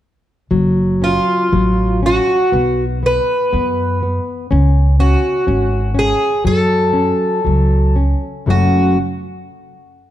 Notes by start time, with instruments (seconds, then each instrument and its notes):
0.51 upright bass F#1, nylon-string guitar F#3
1.02 nylon-string guitar C#4, twelve-string acoustic guitar F4
1.52 upright bass A1, nylon-string guitar F#3
2.03 nylon-string guitar C#4, twelve-string acoustic guitar F#4
2.52 upright bass B1, nylon-string guitar B3
3.03 nylon-string guitar B3, twelve-string acoustic guitar B4
3.53 upright bass F#2, nylon-string guitar B3
4.03 nylon-string guitar B3
4.51 upright bass C#2, nylon-string guitar C#4
5.00 nylon-string guitar C#4, twelve-string acoustic guitar F#4
5.47 upright bass G#1, nylon-string guitar C#4
5.94 nylon-string guitar C#4
5.99 twelve-string acoustic guitar G#4
6.44 upright bass F#2, nylon-string guitar F#3, twelve-string acoustic guitar A4
6.93 nylon-string guitar C#4
7.44 upright bass C#2, nylon-string guitar F#3
7.96 nylon-string guitar C#4
8.46 upright bass F#1, nylon-string guitar F#2 C#3 F#3 A3 C#4, twelve-string acoustic guitar F#4